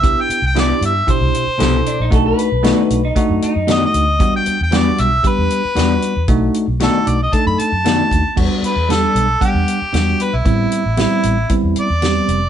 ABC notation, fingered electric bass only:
X:1
M:4/4
L:1/16
Q:1/4=115
K:Em
V:1 name="Fingered electric bass" clef=bass
C,, z2 C,,3 G,,2 z C,, z2 C,,2 z ^A,,, | B,,,2 z B,,,2 z B,,,2 z F,, z F,,3 D,,2 | E,, z2 E,,3 B,,,2 z E,, z2 E,,2 z E,, | B,,,2 z B,,,2 z B,,,2 z F,, z F,,3 ^D,, z |
E,, z2 E,,3 B,,,2 z E,, z2 E,,2 z B,,, | A,,,2 z A,,,2 z A,,,2 z E,, z E,,3 =F,,,2 |]